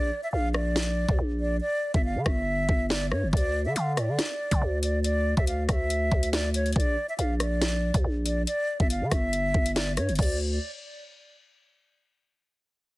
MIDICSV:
0, 0, Header, 1, 4, 480
1, 0, Start_track
1, 0, Tempo, 428571
1, 1810, Time_signature, 4, 2, 24, 8
1, 14534, End_track
2, 0, Start_track
2, 0, Title_t, "Flute"
2, 0, Program_c, 0, 73
2, 0, Note_on_c, 0, 74, 108
2, 233, Note_off_c, 0, 74, 0
2, 262, Note_on_c, 0, 76, 84
2, 346, Note_off_c, 0, 76, 0
2, 359, Note_on_c, 0, 77, 87
2, 547, Note_off_c, 0, 77, 0
2, 612, Note_on_c, 0, 74, 90
2, 1324, Note_off_c, 0, 74, 0
2, 1573, Note_on_c, 0, 74, 84
2, 1756, Note_off_c, 0, 74, 0
2, 1802, Note_on_c, 0, 74, 113
2, 2151, Note_off_c, 0, 74, 0
2, 2179, Note_on_c, 0, 76, 75
2, 2265, Note_off_c, 0, 76, 0
2, 2293, Note_on_c, 0, 77, 80
2, 2476, Note_off_c, 0, 77, 0
2, 2528, Note_on_c, 0, 76, 86
2, 3206, Note_off_c, 0, 76, 0
2, 3248, Note_on_c, 0, 74, 96
2, 3433, Note_off_c, 0, 74, 0
2, 3487, Note_on_c, 0, 73, 82
2, 3672, Note_off_c, 0, 73, 0
2, 3724, Note_on_c, 0, 74, 107
2, 4072, Note_off_c, 0, 74, 0
2, 4092, Note_on_c, 0, 76, 83
2, 4180, Note_off_c, 0, 76, 0
2, 4212, Note_on_c, 0, 77, 88
2, 4396, Note_off_c, 0, 77, 0
2, 4450, Note_on_c, 0, 74, 88
2, 5365, Note_off_c, 0, 74, 0
2, 5411, Note_on_c, 0, 74, 83
2, 5595, Note_off_c, 0, 74, 0
2, 5647, Note_on_c, 0, 74, 112
2, 5993, Note_off_c, 0, 74, 0
2, 6023, Note_on_c, 0, 76, 81
2, 6107, Note_off_c, 0, 76, 0
2, 6131, Note_on_c, 0, 77, 84
2, 6315, Note_off_c, 0, 77, 0
2, 6378, Note_on_c, 0, 76, 85
2, 7051, Note_off_c, 0, 76, 0
2, 7095, Note_on_c, 0, 74, 92
2, 7277, Note_off_c, 0, 74, 0
2, 7334, Note_on_c, 0, 73, 88
2, 7517, Note_off_c, 0, 73, 0
2, 7569, Note_on_c, 0, 74, 109
2, 7914, Note_off_c, 0, 74, 0
2, 7944, Note_on_c, 0, 76, 81
2, 8028, Note_off_c, 0, 76, 0
2, 8041, Note_on_c, 0, 77, 87
2, 8229, Note_off_c, 0, 77, 0
2, 8293, Note_on_c, 0, 74, 90
2, 8937, Note_off_c, 0, 74, 0
2, 9252, Note_on_c, 0, 74, 85
2, 9436, Note_off_c, 0, 74, 0
2, 9483, Note_on_c, 0, 74, 109
2, 9831, Note_off_c, 0, 74, 0
2, 9859, Note_on_c, 0, 76, 75
2, 9945, Note_off_c, 0, 76, 0
2, 9972, Note_on_c, 0, 77, 82
2, 10155, Note_off_c, 0, 77, 0
2, 10208, Note_on_c, 0, 76, 87
2, 10886, Note_off_c, 0, 76, 0
2, 10931, Note_on_c, 0, 74, 94
2, 11115, Note_off_c, 0, 74, 0
2, 11168, Note_on_c, 0, 73, 86
2, 11353, Note_off_c, 0, 73, 0
2, 11409, Note_on_c, 0, 74, 86
2, 11633, Note_off_c, 0, 74, 0
2, 14534, End_track
3, 0, Start_track
3, 0, Title_t, "808-style bass"
3, 0, Program_c, 1, 38
3, 0, Note_on_c, 1, 34, 113
3, 120, Note_off_c, 1, 34, 0
3, 369, Note_on_c, 1, 34, 104
3, 1182, Note_off_c, 1, 34, 0
3, 1215, Note_on_c, 1, 38, 102
3, 1322, Note_off_c, 1, 38, 0
3, 1329, Note_on_c, 1, 34, 109
3, 1790, Note_off_c, 1, 34, 0
3, 2176, Note_on_c, 1, 31, 106
3, 2416, Note_on_c, 1, 50, 100
3, 2433, Note_off_c, 1, 31, 0
3, 2524, Note_off_c, 1, 50, 0
3, 2529, Note_on_c, 1, 31, 107
3, 2990, Note_off_c, 1, 31, 0
3, 3009, Note_on_c, 1, 31, 108
3, 3489, Note_on_c, 1, 43, 103
3, 3506, Note_off_c, 1, 31, 0
3, 3616, Note_on_c, 1, 31, 102
3, 3633, Note_off_c, 1, 43, 0
3, 3724, Note_off_c, 1, 31, 0
3, 3729, Note_on_c, 1, 38, 112
3, 4097, Note_on_c, 1, 50, 100
3, 4114, Note_off_c, 1, 38, 0
3, 4204, Note_off_c, 1, 50, 0
3, 4210, Note_on_c, 1, 50, 103
3, 4450, Note_on_c, 1, 45, 101
3, 4467, Note_off_c, 1, 50, 0
3, 4576, Note_on_c, 1, 50, 100
3, 4593, Note_off_c, 1, 45, 0
3, 4684, Note_off_c, 1, 50, 0
3, 5056, Note_on_c, 1, 50, 104
3, 5165, Note_off_c, 1, 50, 0
3, 5170, Note_on_c, 1, 38, 108
3, 5983, Note_off_c, 1, 38, 0
3, 6016, Note_on_c, 1, 38, 104
3, 6355, Note_off_c, 1, 38, 0
3, 6370, Note_on_c, 1, 38, 111
3, 6831, Note_off_c, 1, 38, 0
3, 6849, Note_on_c, 1, 38, 101
3, 7541, Note_off_c, 1, 38, 0
3, 7570, Note_on_c, 1, 34, 116
3, 7800, Note_off_c, 1, 34, 0
3, 8049, Note_on_c, 1, 34, 105
3, 8863, Note_off_c, 1, 34, 0
3, 8896, Note_on_c, 1, 38, 105
3, 9005, Note_off_c, 1, 38, 0
3, 9009, Note_on_c, 1, 34, 106
3, 9470, Note_off_c, 1, 34, 0
3, 9856, Note_on_c, 1, 31, 107
3, 10097, Note_on_c, 1, 50, 100
3, 10114, Note_off_c, 1, 31, 0
3, 10204, Note_off_c, 1, 50, 0
3, 10209, Note_on_c, 1, 31, 112
3, 10670, Note_off_c, 1, 31, 0
3, 10689, Note_on_c, 1, 31, 103
3, 11170, Note_on_c, 1, 43, 101
3, 11187, Note_off_c, 1, 31, 0
3, 11297, Note_on_c, 1, 31, 100
3, 11314, Note_off_c, 1, 43, 0
3, 11404, Note_off_c, 1, 31, 0
3, 11410, Note_on_c, 1, 38, 111
3, 11856, Note_off_c, 1, 38, 0
3, 14534, End_track
4, 0, Start_track
4, 0, Title_t, "Drums"
4, 610, Note_on_c, 9, 37, 98
4, 722, Note_off_c, 9, 37, 0
4, 849, Note_on_c, 9, 38, 116
4, 961, Note_off_c, 9, 38, 0
4, 1216, Note_on_c, 9, 36, 93
4, 1328, Note_off_c, 9, 36, 0
4, 2176, Note_on_c, 9, 36, 98
4, 2288, Note_off_c, 9, 36, 0
4, 2529, Note_on_c, 9, 36, 92
4, 2529, Note_on_c, 9, 37, 96
4, 2641, Note_off_c, 9, 36, 0
4, 2641, Note_off_c, 9, 37, 0
4, 3009, Note_on_c, 9, 36, 98
4, 3121, Note_off_c, 9, 36, 0
4, 3250, Note_on_c, 9, 38, 122
4, 3362, Note_off_c, 9, 38, 0
4, 3489, Note_on_c, 9, 37, 93
4, 3601, Note_off_c, 9, 37, 0
4, 3729, Note_on_c, 9, 36, 125
4, 3772, Note_on_c, 9, 42, 68
4, 3841, Note_off_c, 9, 36, 0
4, 3884, Note_off_c, 9, 42, 0
4, 4211, Note_on_c, 9, 42, 80
4, 4323, Note_off_c, 9, 42, 0
4, 4449, Note_on_c, 9, 37, 99
4, 4450, Note_on_c, 9, 42, 78
4, 4561, Note_off_c, 9, 37, 0
4, 4562, Note_off_c, 9, 42, 0
4, 4689, Note_on_c, 9, 38, 117
4, 4690, Note_on_c, 9, 42, 85
4, 4801, Note_off_c, 9, 38, 0
4, 4802, Note_off_c, 9, 42, 0
4, 5056, Note_on_c, 9, 36, 92
4, 5056, Note_on_c, 9, 42, 84
4, 5168, Note_off_c, 9, 36, 0
4, 5168, Note_off_c, 9, 42, 0
4, 5407, Note_on_c, 9, 42, 82
4, 5519, Note_off_c, 9, 42, 0
4, 5650, Note_on_c, 9, 42, 87
4, 5762, Note_off_c, 9, 42, 0
4, 6016, Note_on_c, 9, 36, 98
4, 6128, Note_off_c, 9, 36, 0
4, 6130, Note_on_c, 9, 42, 80
4, 6242, Note_off_c, 9, 42, 0
4, 6369, Note_on_c, 9, 37, 98
4, 6370, Note_on_c, 9, 36, 98
4, 6370, Note_on_c, 9, 42, 74
4, 6481, Note_off_c, 9, 37, 0
4, 6482, Note_off_c, 9, 36, 0
4, 6482, Note_off_c, 9, 42, 0
4, 6610, Note_on_c, 9, 42, 84
4, 6722, Note_off_c, 9, 42, 0
4, 6849, Note_on_c, 9, 36, 96
4, 6961, Note_off_c, 9, 36, 0
4, 6977, Note_on_c, 9, 42, 82
4, 7089, Note_off_c, 9, 42, 0
4, 7091, Note_on_c, 9, 38, 120
4, 7091, Note_on_c, 9, 42, 88
4, 7203, Note_off_c, 9, 38, 0
4, 7203, Note_off_c, 9, 42, 0
4, 7327, Note_on_c, 9, 42, 82
4, 7439, Note_off_c, 9, 42, 0
4, 7457, Note_on_c, 9, 42, 41
4, 7532, Note_off_c, 9, 42, 0
4, 7532, Note_on_c, 9, 42, 56
4, 7569, Note_on_c, 9, 36, 123
4, 7613, Note_off_c, 9, 42, 0
4, 7613, Note_on_c, 9, 42, 70
4, 7681, Note_off_c, 9, 36, 0
4, 7725, Note_off_c, 9, 42, 0
4, 8050, Note_on_c, 9, 42, 81
4, 8162, Note_off_c, 9, 42, 0
4, 8289, Note_on_c, 9, 37, 97
4, 8289, Note_on_c, 9, 42, 76
4, 8401, Note_off_c, 9, 37, 0
4, 8401, Note_off_c, 9, 42, 0
4, 8529, Note_on_c, 9, 38, 117
4, 8530, Note_on_c, 9, 42, 84
4, 8641, Note_off_c, 9, 38, 0
4, 8642, Note_off_c, 9, 42, 0
4, 8895, Note_on_c, 9, 36, 94
4, 8896, Note_on_c, 9, 42, 82
4, 9007, Note_off_c, 9, 36, 0
4, 9008, Note_off_c, 9, 42, 0
4, 9247, Note_on_c, 9, 42, 83
4, 9359, Note_off_c, 9, 42, 0
4, 9489, Note_on_c, 9, 42, 89
4, 9601, Note_off_c, 9, 42, 0
4, 9856, Note_on_c, 9, 36, 100
4, 9968, Note_off_c, 9, 36, 0
4, 9970, Note_on_c, 9, 42, 77
4, 10082, Note_off_c, 9, 42, 0
4, 10209, Note_on_c, 9, 36, 95
4, 10209, Note_on_c, 9, 37, 96
4, 10209, Note_on_c, 9, 42, 76
4, 10321, Note_off_c, 9, 36, 0
4, 10321, Note_off_c, 9, 37, 0
4, 10321, Note_off_c, 9, 42, 0
4, 10449, Note_on_c, 9, 42, 85
4, 10561, Note_off_c, 9, 42, 0
4, 10689, Note_on_c, 9, 36, 96
4, 10801, Note_off_c, 9, 36, 0
4, 10817, Note_on_c, 9, 42, 81
4, 10929, Note_off_c, 9, 42, 0
4, 10932, Note_on_c, 9, 38, 123
4, 10932, Note_on_c, 9, 42, 83
4, 11044, Note_off_c, 9, 38, 0
4, 11044, Note_off_c, 9, 42, 0
4, 11168, Note_on_c, 9, 42, 83
4, 11170, Note_on_c, 9, 37, 94
4, 11280, Note_off_c, 9, 42, 0
4, 11282, Note_off_c, 9, 37, 0
4, 11298, Note_on_c, 9, 42, 43
4, 11373, Note_off_c, 9, 42, 0
4, 11373, Note_on_c, 9, 42, 55
4, 11410, Note_on_c, 9, 36, 109
4, 11411, Note_on_c, 9, 49, 91
4, 11453, Note_off_c, 9, 42, 0
4, 11453, Note_on_c, 9, 42, 72
4, 11522, Note_off_c, 9, 36, 0
4, 11523, Note_off_c, 9, 49, 0
4, 11565, Note_off_c, 9, 42, 0
4, 14534, End_track
0, 0, End_of_file